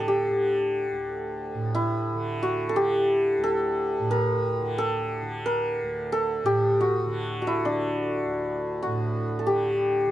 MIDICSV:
0, 0, Header, 1, 3, 480
1, 0, Start_track
1, 0, Key_signature, 2, "major"
1, 0, Tempo, 671141
1, 46, Time_signature, 4, 2, 24, 8
1, 7233, End_track
2, 0, Start_track
2, 0, Title_t, "Santur"
2, 0, Program_c, 0, 15
2, 0, Note_on_c, 0, 69, 53
2, 57, Note_on_c, 0, 67, 65
2, 1249, Note_on_c, 0, 64, 80
2, 1736, Note_on_c, 0, 66, 80
2, 1778, Note_off_c, 0, 67, 0
2, 1922, Note_off_c, 0, 69, 0
2, 1925, Note_on_c, 0, 69, 64
2, 1974, Note_on_c, 0, 67, 77
2, 2017, Note_off_c, 0, 66, 0
2, 2454, Note_off_c, 0, 69, 0
2, 2457, Note_on_c, 0, 69, 85
2, 2938, Note_on_c, 0, 70, 82
2, 2981, Note_off_c, 0, 69, 0
2, 3421, Note_on_c, 0, 69, 86
2, 3464, Note_off_c, 0, 70, 0
2, 3736, Note_off_c, 0, 64, 0
2, 3903, Note_on_c, 0, 70, 87
2, 3946, Note_off_c, 0, 69, 0
2, 4220, Note_off_c, 0, 67, 0
2, 4380, Note_on_c, 0, 69, 87
2, 4422, Note_off_c, 0, 70, 0
2, 4618, Note_on_c, 0, 67, 81
2, 4868, Note_on_c, 0, 66, 68
2, 4911, Note_off_c, 0, 67, 0
2, 5302, Note_off_c, 0, 66, 0
2, 5305, Note_on_c, 0, 66, 54
2, 5343, Note_on_c, 0, 64, 75
2, 5472, Note_on_c, 0, 62, 62
2, 6309, Note_off_c, 0, 66, 0
2, 6312, Note_on_c, 0, 66, 68
2, 6472, Note_off_c, 0, 69, 0
2, 6716, Note_on_c, 0, 69, 50
2, 6769, Note_on_c, 0, 67, 73
2, 6812, Note_off_c, 0, 66, 0
2, 7233, Note_off_c, 0, 62, 0
2, 7233, Note_off_c, 0, 64, 0
2, 7233, Note_off_c, 0, 67, 0
2, 7233, Note_off_c, 0, 69, 0
2, 7233, End_track
3, 0, Start_track
3, 0, Title_t, "Tanpura"
3, 0, Program_c, 1, 104
3, 0, Note_on_c, 1, 38, 49
3, 0, Note_on_c, 1, 45, 52
3, 0, Note_on_c, 1, 50, 54
3, 224, Note_off_c, 1, 50, 0
3, 224, Note_on_c, 1, 50, 50
3, 658, Note_off_c, 1, 38, 0
3, 661, Note_on_c, 1, 38, 51
3, 1102, Note_off_c, 1, 45, 0
3, 1105, Note_on_c, 1, 45, 48
3, 1538, Note_off_c, 1, 50, 0
3, 1538, Note_on_c, 1, 50, 51
3, 1980, Note_off_c, 1, 50, 0
3, 1980, Note_on_c, 1, 50, 53
3, 2412, Note_off_c, 1, 38, 0
3, 2415, Note_on_c, 1, 38, 60
3, 2855, Note_off_c, 1, 45, 0
3, 2858, Note_on_c, 1, 45, 57
3, 3294, Note_off_c, 1, 50, 0
3, 3294, Note_on_c, 1, 50, 51
3, 3735, Note_off_c, 1, 50, 0
3, 3735, Note_on_c, 1, 50, 53
3, 4167, Note_off_c, 1, 38, 0
3, 4170, Note_on_c, 1, 38, 55
3, 4598, Note_off_c, 1, 45, 0
3, 4600, Note_on_c, 1, 45, 57
3, 5052, Note_off_c, 1, 50, 0
3, 5052, Note_on_c, 1, 50, 54
3, 5472, Note_off_c, 1, 50, 0
3, 5472, Note_on_c, 1, 50, 52
3, 5905, Note_off_c, 1, 38, 0
3, 5908, Note_on_c, 1, 38, 48
3, 6338, Note_off_c, 1, 45, 0
3, 6341, Note_on_c, 1, 45, 53
3, 6774, Note_off_c, 1, 50, 0
3, 6774, Note_on_c, 1, 50, 53
3, 7203, Note_off_c, 1, 50, 0
3, 7203, Note_on_c, 1, 50, 58
3, 7233, Note_off_c, 1, 38, 0
3, 7233, Note_off_c, 1, 45, 0
3, 7233, Note_off_c, 1, 50, 0
3, 7233, End_track
0, 0, End_of_file